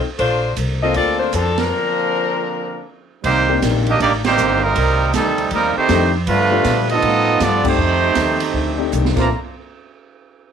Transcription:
0.06 muted upright bass stroke
0.18 A#1 A3 A#3 D4 F4 A4 C5, kick, ride
0.23 C5
0.56 C2 A#3 D4 A4 C5, kick, hi-hat pedal, ride
0.83 A#3 C4 D4 F4 A4 D#5
0.94 D2 A#3 C4 D4 F4 A4 C5 D5, kick, ride
1.20 A3 D4 F4 C5
1.33 F2 F3 A#3 C4 D4 A4 C5, kick, hi-hat pedal, ride
1.58 D3 F3 A#3 C4 D4 A#4, snare, ride
3.23 C2 C3 D#3 G3 A#3 C4 D4 D#4 G4 C5, kick, ride
3.49 A#3 C4 D4 D#4 G4
3.62 A#1 C3 D#3 A#3 D4, kick, snare, hi-hat pedal, ride
3.87 G3 A#3 D4 D#4 G4 D#5, ride
3.99 A1 C3 D#3 G3 A#3 D4 D#4 G4 D5, kick, ride
4.25 D#3 G3 A#3 C4 D#4 G4 C5, snare, ride
4.37 G1 C3 D#3 A#3 D4, hi-hat pedal
4.64 C3 D#3 G3 A#3 C4 D#4 A#4
4.75 C2 F2 D#3 A3 D4, kick, ride
5.14 D2 F2 C3 D#3 G3 A3 C4 D4 D#4 A4, kick, snare, hi-hat pedal, ride
5.38 ride
5.51 D#2 F2 D#3 G3 A3 A#3 C4 D4 D#4 A#4, kick, ride
5.76 D#3 A3 C4 D#4 G4 C5, muted upright bass stroke
5.88 F2 D#3 A3 C4 D4 D#4 G4, kick, snare, hi-hat pedal, ride
6.27 G2 D3 F3 G3 A3 B3 D4 F4 A4 B4, kick, ride
6.50 A3 D4 F4 G4 B4
6.64 A#2 G3 B3 F4 A4, kick, snare, hi-hat pedal, ride
6.89 F3 B3 D#4 F4 A4 D#5, ride
7.02 A2 G3 B3 F4 A4, kick, ride
7.40 G2 F3 G3 B3 D4 F4 A4 D5, kick, snare, hi-hat pedal, ride
7.63 A3 C4 D4 D#4 G4, kick, crash
7.67 A3 D#4 G4 C5
7.78 F2 D#3 A3 D4
8.15 D#2 F2 D#3 A3 D4, kick, snare, hi-hat pedal, ride
8.40 ride
8.53 D2 F2 D#3 A3 D4, kick
8.77 A3 C4 D4 D#4 G4
8.92 C2 F2 D#3 A3 D4, hi-hat pedal
9.05 snare
9.15 A#1 A#2 F3 A3 A#3 C4 D4 F4 A4 C5 D5 A#5, kick, snare, crash

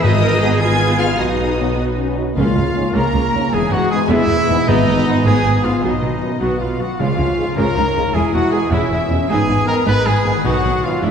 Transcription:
Already playing: G#3 B3 G#4 B4 G#5
0.02 G#1 G#2 B3 D#4 G#4 B4 D#5 D#6
0.13 G#3
0.22 A#4
0.32 B4
0.41 B2 G#3 B3 G#4
0.52 B4
0.60 B3 F4 G#4 G#5 B5 G#6
0.71 B4
0.80 G#4
0.90 B4
0.99 B2 G#3 B3 F4 G#4 F5 F6
1.11 G#3
1.19 B1 B2 B3 D#4 F#4 D#5 D#6
1.29 B3
1.39 B4
1.49 F#4
1.58 B2 F#3 B3 B4
1.68 B5
1.76 B3 F#5
1.89 B5
1.97 C#4 B4
2.08 F#4
2.16 B2 F#3 D#4 B4
2.27 B3
2.33 C#2 C#3 G#3 A#3 C#4 F4 F5
2.38 C#3 F4 F5
2.47 C#4
2.55 C#2 G#3 C#4 F4
2.66 G#4
2.75 G#2 A#3 C#4 C#5
2.86 F5
2.94 C#2 G#3 C#4 A#4 G#5 A#5
3.06 F5
3.13 C#2 G#3 C#4 C#5
3.25 G#4
3.33 C#2 G#2 G#3 C#4 F4
3.44 C#4
3.51 E1 E2 E3 G#3 B3 G#4 G#5
3.55 G#4
3.63 B3
3.71 E1 E2 G#3 B3 F#4 G#4 F#5
3.82 B3
3.91 G#2 B3 G#4 B4 G#5
4.02 G#5
4.09 E1 E2 G#3 B3 E4 B4 E5
4.21 G#5
4.28 E1 E2 G#3 B3 B4
4.41 G#4
4.48 E1 E2 G#2 G#3 B3
4.60 E4
4.66 G#1 G#2 G#3 B3 D#4 D#5
4.70 D#5
4.79 B3
4.86 G#1 G#2 G#3 B3 G#4
4.98 B4
5.06 G#2 B3 G#4
5.18 G#5
5.24 G#1 G#2 G#3 B3 G#4 G#5 B5
5.37 G#5
5.44 G#1 G#2 G#3 B3 B4
5.56 G#4
5.62 G#1 G#2 G#3 B3 F4 F5
5.75 D#3
5.82 B1 B2 F#3 B3 D#4 D#5
5.95 B3
6.02 B1 B2 F#3 B3 F#4
6.14 D#5
6.23 F#2 B3 B4
6.33 F#5
6.40 B1 B2 F#3 B3 F#4 F#5 D#6
6.52 F#5
6.59 B1 B2 F#3 B3 F4 B4 F5
6.71 D#5
6.79 B1 F#2 B2 F#3 B3 F#4 F#5
6.90 B3
6.97 C#2 C#3 F3 G#3 F4 F5
7.10 G#3
7.17 C#2 C#3 F3 G#3 F4
7.29 C#5
7.37 G#2 G#3 G#4
7.48 F5
7.56 C#2 C#3 F3 G#3 C#4 A#4 A#5 C#6
7.68 F5
7.75 C#2 C#3 F3 G#3 D#4
7.87 C#5
7.94 C#2 G#2 C#3 F3 G#3 F4
8.07 G#3
8.13 E1 E2 E3 G#3 E4 G#4 G#5
8.32 E1 E2 G#3 E4 F#4 G#4 F#5
8.45 B4
8.50 B2 G#3 G#4 G#5
8.55 G#4
8.64 G#5
8.70 E1 E2 G#3 C#4 E4 E5 B5
8.83 G#5
8.91 E1 E2 G#3 B3 E4 G#4
9.01 B4
9.08 E1 E2 B2 G#3 C#4 E4 G#4
9.21 G#3
9.27 G#1 G#2 B3 D#4 G#4 G#5
9.39 B3
9.48 G#1 G#2 B3 D#4
9.59 B4
9.66 D#3 B3 D#4 A#4 A#5
9.77 D#5
9.85 G#1 G#2 G#3 B3 D#4 B4 B5
9.96 D#5
10.04 G#1 G#2 B3 D#4 G#4 B4 G#5
10.15 D#4
10.25 G#1 G#2 D#3 B3 D#4
10.36 D#3
10.43 B1 B2 F#3 B3 D#4 F#4 F#5
10.55 B3
10.63 B1 B2 B3 D#4
10.75 B4
10.83 D#3 B3 D#4 F4 F5
10.95 D#5
11.01 E1 E2 E3 G#3 D4 E4 E5

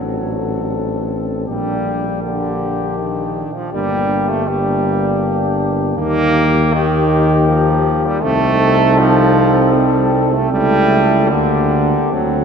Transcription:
Already playing: A1 F#3 C4 D4 A4
1.47 A#1 G3 A#3 D4 G4
2.22 D3 A#3 D4 G4
2.97 D#3
3.55 F3
3.71 G1 G3 A#3 D4 G4
4.29 A3
4.47 G3 A#3 D4 G4
5.97 D#2 A#3 D#4 G4
6.72 D#3 A#3 D#4 G4
7.48 F3
8.06 G3
8.22 C2 A3 C4 D#4 A4
8.99 F3
9.75 G3
10.33 A3
10.52 C#2 G3 A3 E4 A4
11.30 D2 D3 A#3 D4 G4
12.12 D2 F#3 C4 D4 A4

